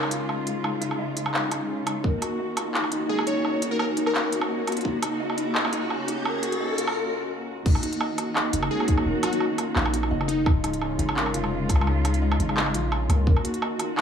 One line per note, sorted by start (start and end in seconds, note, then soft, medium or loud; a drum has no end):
0.00 2.02 C#3 medium
0.00 2.02 G#3 medium
0.00 1.69 C#4 medium
0.00 0.64 D#4 loud
0.00 2.02 F4 medium
0.00 2.04 A#4 medium
0.00 low woodblock medium
0.11 0.28 F4 loud
0.11 closed hi-hat medium
0.29 0.45 D#5 medium
0.29 low woodblock medium
0.46 0.62 F4 medium
0.46 closed hi-hat medium
0.64 0.80 D#4 medium
0.64 low woodblock medium
0.81 0.97 D#4 loud
0.81 closed hi-hat medium
0.91 low woodblock medium
0.99 1.16 D#5 loud
1.16 1.32 D#4 medium
1.16 closed hi-hat medium
1.26 low woodblock medium
1.34 1.51 D#5 medium
1.34 clap loud
1.51 1.68 D#4 loud
1.51 closed hi-hat medium
1.51 low woodblock soft
1.69 1.85 C#4 medium
1.86 2.02 D#4 loud
1.86 closed hi-hat medium
1.86 low woodblock medium
2.04 4.82 D#3 medium
2.04 7.62 A#3 medium
2.04 7.62 F#4 medium
2.04 2.20 A#4 medium
2.04 kick loud
2.04 riser medium
2.22 2.39 F#4 loud
2.22 closed hi-hat medium
2.22 low woodblock soft
2.39 2.55 D#5 medium
2.57 2.73 F4 medium
2.57 closed hi-hat medium
2.57 low woodblock medium
2.74 2.90 D#4 medium
2.74 clap loud
2.84 low woodblock medium
2.92 3.08 D#4 loud
2.92 closed hi-hat medium
3.09 3.27 G#4 loud
3.09 3.26 D#5 loud
3.19 low woodblock medium
3.27 3.43 D#4 medium
3.27 3.70 C#5 medium
3.27 closed hi-hat medium
3.45 3.62 D#5 medium
3.45 low woodblock medium
3.62 3.79 D#4 loud
3.62 closed hi-hat medium
3.71 3.77 A#4 medium
3.79 3.96 C#4 medium
3.79 3.86 A#4 medium
3.79 low woodblock medium
3.97 4.13 D#4 loud
3.97 closed hi-hat medium
4.06 4.12 A#4 medium
4.06 low woodblock medium
4.15 4.21 A#4 medium
4.15 4.31 A#4 medium
4.15 clap loud
4.32 4.49 F#4 loud
4.32 closed hi-hat medium
4.41 low woodblock medium
4.50 4.66 D#5 medium
4.67 4.84 F4 medium
4.67 closed hi-hat medium
4.67 low woodblock medium
4.72 closed hi-hat soft
4.77 closed hi-hat soft
4.81 7.63 C#3 medium
4.81 closed hi-hat soft
4.85 5.01 D#4 medium
4.85 kick loud
5.03 5.19 D#4 loud
5.03 closed hi-hat medium
5.03 low woodblock medium
5.20 5.37 D#5 loud
5.30 low woodblock medium
5.38 5.54 D#4 medium
5.38 closed hi-hat medium
5.55 5.72 D#5 medium
5.55 clap loud
5.65 low woodblock medium
5.73 5.89 D#4 loud
5.73 closed hi-hat medium
5.90 6.06 C#4 medium
5.90 low woodblock medium
6.08 6.24 D#4 loud
6.08 closed hi-hat medium
6.25 6.41 A#4 medium
6.25 low woodblock medium
6.43 6.60 F#4 loud
6.43 closed hi-hat medium
6.52 closed hi-hat soft
6.60 6.76 D#5 medium
6.78 6.94 F4 medium
6.78 closed hi-hat medium
6.87 low woodblock medium
7.65 7.75 D#1 loud
7.65 10.44 D#3 medium
7.65 10.44 A#3 medium
7.65 7.82 D#4 medium
7.65 10.44 F#4 medium
7.65 kick loud
7.65 crash loud
7.75 low woodblock medium
7.83 7.99 D#4 loud
7.83 closed hi-hat medium
7.93 closed hi-hat soft
8.01 8.18 D#5 loud
8.01 low woodblock medium
8.18 8.34 D#4 medium
8.18 closed hi-hat medium
8.18 low woodblock medium
8.36 8.53 D#5 medium
8.36 clap loud
8.36 low woodblock medium
8.53 8.70 F#1 medium
8.53 8.70 D#4 loud
8.53 closed hi-hat medium
8.63 low woodblock medium
8.71 8.87 C#4 medium
8.71 8.92 G#4 loud
8.80 low woodblock medium
8.88 9.04 D#4 loud
8.88 kick medium
8.88 closed hi-hat medium
8.98 low woodblock medium
9.06 9.15 D#1 loud
9.06 9.22 A#4 medium
9.23 9.40 F#4 loud
9.23 9.45 F#4 medium
9.23 closed hi-hat medium
9.23 low woodblock medium
9.33 closed hi-hat soft
9.40 9.57 D#5 medium
9.40 low woodblock medium
9.58 9.74 F4 medium
9.58 closed hi-hat medium
9.58 low woodblock medium
9.76 10.10 A#1 medium
9.76 9.92 D#4 medium
9.76 clap loud
9.86 low woodblock medium
9.93 10.10 D#4 loud
9.93 closed hi-hat medium
10.03 low woodblock medium
10.11 10.45 F#1 medium
10.11 10.28 D#5 loud
10.21 low woodblock medium
10.28 10.50 D#4 medium
10.28 10.45 D#4 medium
10.28 closed hi-hat medium
10.46 10.98 C#1 medium
10.46 13.25 C#3 medium
10.46 13.25 G#3 medium
10.46 13.25 F4 medium
10.46 10.63 D#5 medium
10.46 kick loud
10.46 low woodblock medium
10.64 10.81 D#4 loud
10.64 closed hi-hat medium
10.64 low woodblock soft
10.74 closed hi-hat soft
10.81 10.97 C#4 medium
10.81 low woodblock medium
10.99 11.36 G#1 medium
10.99 11.15 D#4 loud
10.99 closed hi-hat medium
11.09 low woodblock medium
11.16 11.33 A#4 medium
11.16 clap loud
11.26 low woodblock medium
11.34 11.71 F1 medium
11.34 11.51 F4 loud
11.34 closed hi-hat medium
11.44 low woodblock medium
11.52 11.68 D#5 medium
11.69 12.38 C#2 medium
11.69 11.85 F4 medium
11.69 kick medium
11.69 closed hi-hat medium
11.69 low woodblock soft
11.76 low woodblock soft
11.81 low woodblock medium
11.87 12.03 D#4 medium
11.87 low woodblock soft
12.04 12.20 D#4 loud
12.04 closed hi-hat medium
12.04 low woodblock medium
12.14 closed hi-hat soft
12.22 12.39 D#5 loud
12.32 low woodblock medium
12.39 12.76 G#1 medium
12.39 12.55 D#4 medium
12.39 closed hi-hat medium
12.49 low woodblock medium
12.57 12.74 D#5 medium
12.57 clap loud
12.66 low woodblock medium
12.74 13.09 A#1 medium
12.74 12.85 F4 loud
12.74 closed hi-hat medium
12.92 13.09 C#4 medium
12.92 low woodblock medium
13.09 13.26 C#2 medium
13.09 13.25 A#3 medium
13.09 closed hi-hat medium
13.09 low woodblock medium
13.27 13.36 D#1 loud
13.27 14.01 D#3 medium
13.27 14.01 A#3 medium
13.27 14.01 F#4 medium
13.27 13.43 A#4 medium
13.27 kick loud
13.37 low woodblock medium
13.44 13.61 F#4 loud
13.44 closed hi-hat medium
13.54 closed hi-hat soft
13.62 13.78 D#5 medium
13.62 low woodblock medium
13.79 13.95 F4 medium
13.79 closed hi-hat medium
13.79 low woodblock medium
13.97 14.01 D#4 medium
13.97 clap loud
13.97 low woodblock medium